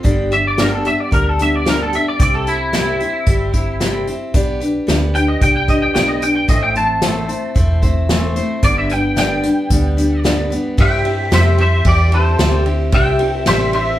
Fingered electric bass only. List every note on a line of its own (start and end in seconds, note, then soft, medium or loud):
0.04 0.88 G1 medium
1.12 1.96 D2 medium
2.20 3.03 C2 medium
3.27 4.11 G1 medium
4.34 4.76 B1 medium
4.89 5.34 D2 medium
5.42 5.87 C2 medium
5.96 6.41 B1 medium
6.48 7.32 A1 medium
7.56 8.40 E1 medium
8.63 9.47 G1 medium
9.70 10.54 D2 medium
10.78 11.30 G2 medium
11.32 11.84 F2 medium
11.85 12.38 E2 medium
12.39 12.92 D2 medium
12.92 13.45 C2 medium
13.48 13.99 A1 loud